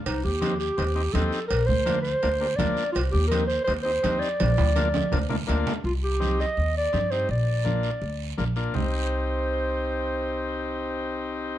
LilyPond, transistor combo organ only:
\new Staff \with { instrumentName = "Transistor combo organ" } { \time 4/4 \key c \minor \tempo 4 = 166 r4 <c' ees' g'>8 r8 <c' ees' g'>8 <c' ees' g'>8 <c' ees' g'>8 r8 | r4 <bes d' f'>8 r8 <bes d' f'>8 <bes d' g'>8 <bes d' f'>8 r8 | r4 <c' ees' g'>8 r8 <c' ees' g'>8 <c' ees' g'>8 <c' ees' g'>8 r8 | r4 <bes d' f'>8 r8 <bes d' f'>8 <bes d' f'>8 <bes d' f'>8 r8 |
r4 <c' ees' g'>8 r4. <c' ees' g'>8 <c' ees' g'>8 | r4 <bes d' f'>8 r4. <bes d' f'>8 <bes d' f'>8 | <c' ees' g'>1~ | <c' ees' g'>1 | }